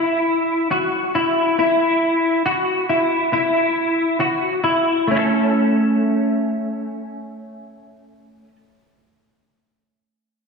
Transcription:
clean electric guitar
Already playing: E4
0.71 F#4
1.15 E4
1.59 E4
2.46 F#4
2.89 E4
3.33 E4
4.20 F#4
4.64 E4
5.07 A3 C#4
5.15 E4 A4

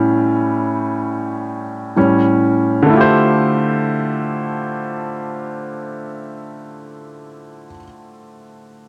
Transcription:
grand piano
Already playing: A2 G3 C#4 G4 E5
1.96 A2 G3 C#4
2.82 D3 A3
2.90 E4 F4
2.97 G4 C5

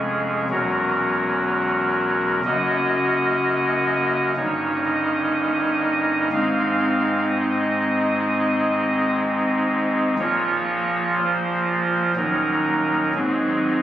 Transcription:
pipe organ
Already playing: F1 F2 G#3 C#4 G#4
0.50 E1 E2 F#3 C#4 F#4 A#4
1.45 A#4
2.44 F#1 F#2 A#3 C#4 F#4 D#5
4.36 G1 G2 A#3 C#4 D#4 C#5
4.85 D#5
6.32 G#1 G#2 G#3 C4 D#4 F5
7.27 D#5
10.19 A#1 A#2 F3 A#3 F4 C#5
11.18 C5
12.16 D#1 D#2 F#3 C#4 D#4 A#4
13.15 G#1 G#2 F#3 C4 D#4 G#4

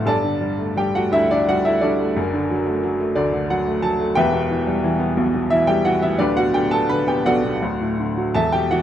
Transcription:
upright piano
0.05 G1 G2 A4 D5 A5
0.24 D3
0.41 G3
0.59 A3
0.76 G3 G4 G5
0.94 A3 F#4 F#5
1.11 D2 D3 E4 E5
1.30 D3 D4 D5
1.48 G3 F#4 F#5
1.65 A3 E4 E5
1.81 G3 D4 F#4 A4 D5
2.00 A3
2.16 F#1 F#2
2.33 D3
2.50 F#3
2.66 A3
2.83 F#3
3.00 A3
3.15 D2 D3 D5
3.33 D3
3.50 F#3 F#5
3.66 A3
3.82 F#3 A5
3.99 A3
4.15 E1 E2 G4 B4 E5 G5
4.33 B2
4.50 E3
4.67 G3
4.84 E3
5.00 B3
5.17 B1 B2
5.34 B2
5.50 E3 E4 E5
5.67 G3 G4 G5
5.85 E3 F#4 F#5
6.02 B3 E4 E5
6.19 D1 D2 D4 G4 B4 D5
6.36 B2 F#4 F#5
6.53 D3 G4 G5
6.71 B3 A4 A5
6.89 D3 B4 B5
7.07 B3 G4 G5
7.25 B1 B2 F#4 A4 D5 F#5
7.44 B2
7.62 D1 D2
7.81 A2
7.99 D3
8.17 F#3
8.34 E1 E2 A4 E5 A5
8.52 B2 G4 G5
8.70 E3 F#4 F#5

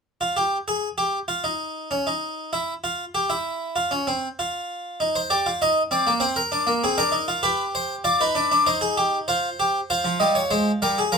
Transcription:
harpsichord
0.21 F4
0.37 G4
0.68 G#4
0.98 G4
1.28 F4
1.44 D#4
1.91 C#4
2.07 D#4
2.53 E4
2.84 F4
3.15 G4
3.30 E4
3.76 F4
3.91 C#4
4.07 C4
4.39 F4
5.00 D#4
5.16 C5
5.30 G4 D5
5.46 F4
5.62 D#4 D#5
5.91 C4 D5
6.07 A#3
6.20 C4 C5
6.36 A#4
6.52 D4
6.67 A#3
6.84 C4 G#4
6.98 D4 A#4
7.12 D#4
7.28 F4
7.43 G4 B4
7.75 C5
8.04 F4 D5
8.21 D#4 B4
8.35 D4
8.51 D4
8.66 D#4 C5
8.81 G#4
8.97 G4
9.28 F4 C5
9.60 G4
9.90 F4 C5
10.04 F3
10.20 G3 D#5
10.35 C#5
10.50 G#3 C5
10.82 G3 A#4
10.98 G#4
11.12 F3 A#4

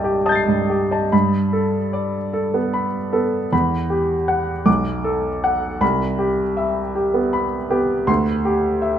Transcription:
grand piano
Already playing: C2 G2 G4 D#5 G5 A5
0.04 G4
0.26 D#5 A5 D#6 G6
0.32 A6 C7
0.48 G2
0.70 G4
0.91 D#5 A5
1.12 G2 B5
1.53 A4
1.93 D5
2.33 A4
2.54 B3
2.74 B5
3.13 B3 A4
3.52 E2 B5
3.90 G4
4.28 F#5
4.66 B1 D6
5.04 A4
5.44 F#5
5.81 C2 B5
6.19 G4
6.57 E5
6.95 G4
7.14 B3
7.33 B5
7.70 B3 G4
8.07 D2 C6
8.45 G4
8.82 E5

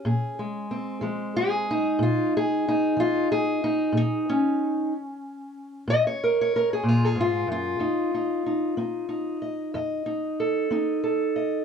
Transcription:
steel-string acoustic guitar
Already playing: C#4
0.05 A#2 G#4
0.39 G#3
0.71 C4
1.01 F3 G#3
1.37 G#4
1.71 D#4
1.99 A#2 F4
2.37 G#4
2.68 D#4
2.97 F3 F4
3.32 G#4
3.64 D#4
3.92 A#2
3.97 D#4
4.30 C#4
5.88 A#2 D#5
6.07 C#5
6.24 A#4
6.41 C#5
6.56 A#4
6.73 G#4
6.83 A#2
6.88 F4
7.04 G#4
7.15 G#2
7.21 F4
7.47 F#2
7.52 F4
7.79 F2 D#4
8.14 D#4
8.46 D#4
8.77 C4 D#4
9.09 D#4
9.42 D#5
9.74 F2 D#5
10.06 D#4
10.40 A4
10.71 C4 D#4
11.04 A4
11.36 D#5

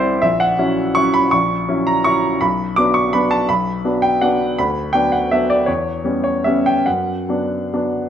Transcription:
grand piano
Already playing: C2 G3 C4 E4 C5 D5 E5
0.22 A#1 E5
0.40 F#5
0.59 F#3 C#4 E4
0.95 F#3 C#4 E4 C#6
1.14 B5
1.31 A#1 C#6
1.69 F#3 C#4 E4
1.87 A#5
2.04 F#3 C#4 E4 C#6
2.41 B1 B5
2.76 F#3 B3 D4 D6
2.94 C#6
3.13 F#3 B3 D4 B5
3.31 A5
3.49 B1 B5
3.85 F#3 B3 D4
4.02 G5
4.21 F#3 B3 D4 F#5
4.59 D2 B5
4.93 F#3 B3 D4 G5
5.12 F#5
5.31 F#3 B3 D4 E5
5.50 D5
5.66 E2 C#5
6.04 G3 B3 C#4
6.24 C#5
6.44 G3 B3 C#4 E5
6.66 G5
6.86 F#2 F#5
7.29 F#3 B3 D4
7.74 F#3 B3 D4

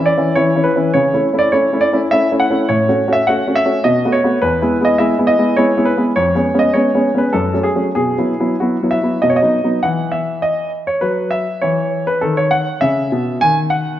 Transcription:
grand piano
0.00 E3 C#4 E4
0.06 D5
0.18 E3 C#4 E4
0.35 E3 C#4 E4 C#5
0.55 E3 C#4 E4
0.64 B4
0.76 E3 C#4 E4
0.94 C#3 C#5
1.13 A3 C#4 E4
1.33 A3 C#4 E4
1.39 D5
1.52 A3 C#4 E4 C#5
1.73 A3 C#4 E4
1.81 D5
1.92 A3 C#4 E4
2.11 A3 C#4 E4 E5
2.31 A3 C#4 E4
2.40 F#5
2.50 A3 C#4 E4
2.69 A2 C#5
2.88 A3 C#4 F#4
3.08 A3 C#4 F#4
3.13 E5
3.27 A3 C#4 F#4 F#5
3.47 A3 C#4 F#4
3.56 E5
3.65 A3 C#4 F#4
3.84 B2 D#5
4.05 A3 B3 F#4
4.12 C#5
4.24 A3 B3 F#4
4.42 E2 B4
4.62 G#3 B3 E4
4.81 G#3 B3 E4 D#5
4.98 G#3 B3 E4 E5
5.18 G#3 B3 E4
5.27 D#5
5.38 G#3 B3 E4
5.57 G#3 B3 E4 C#5
5.77 G#3 B3 E4
5.85 B4
5.97 G#3 B3 E4
6.16 F2 C#5
6.35 G#3 B3 C#4
6.54 G#3 B3 C#4
6.59 D#5
6.73 G#3 B3 C#4 C#5
6.94 G#3 B3 C#4
7.15 G#3 B3 C#4 B4
7.33 F#2 A4
7.53 F#3 A3 C#4
7.63 G#4
7.75 F#3 A3 C#4
7.95 B2 G#4
8.18 F#3 B3 E4
8.40 F#3 B3 E4
8.60 F#3 B3 E4 F#4
8.83 F#3 B3 E4
8.91 E5
9.03 F#3 B3 E4
9.22 B2 D#5
9.30 C#5
9.36 D#5
9.42 F#3 B3 D#4
9.64 F#3 B3 D#4
9.83 E3 F#5
10.12 E5
10.42 D#5
10.87 C#5
11.01 F#3 B4
11.31 E5
11.62 E3 C#5
12.07 B4
12.21 D#3 A4
12.37 C#5
12.51 F#5
12.81 C#3 E5
13.12 B2
13.41 D#3 G#5
13.70 F#5

